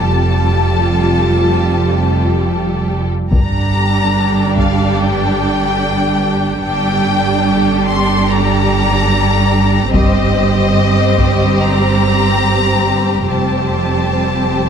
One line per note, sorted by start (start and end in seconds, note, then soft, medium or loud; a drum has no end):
0.00 3.12 F1 soft
0.00 3.12 F2 soft
0.00 3.09 G3 soft
0.00 3.13 F4 soft
0.00 3.09 G4 soft
0.00 3.09 A4 soft
0.00 2.91 A5 medium
3.31 6.61 G1 soft
3.31 6.60 G2 soft
3.31 6.61 G3 soft
3.31 6.61 D4 soft
3.31 6.60 G4 soft
3.31 6.61 A4 soft
3.31 4.53 A#5 medium
3.31 taiko soft
4.57 4.99 F5 medium
4.57 taiko soft
4.99 6.63 G5 medium
6.63 9.90 G1 soft
6.63 9.89 G2 medium
6.63 9.89 G3 soft
6.63 9.89 D4 soft
6.63 9.90 G4 soft
6.63 9.90 A4 soft
6.63 7.86 G5 medium
7.87 8.28 C6 medium
8.29 9.94 A#5 medium
9.92 13.25 G1 medium
9.92 13.25 G2 medium
9.92 13.26 G3 soft
9.92 13.26 C4 medium
9.92 13.26 G4 medium
9.92 13.26 C5 soft
9.92 11.58 D#5 medium
9.92 taiko medium
11.18 taiko soft
11.61 13.30 A#5 medium
13.29 14.69 F1 soft
13.29 14.69 F2 soft
13.29 14.69 G3 soft
13.29 14.69 C4 soft
13.29 14.69 G4 soft
13.29 14.69 C5 soft
13.29 14.69 A5 medium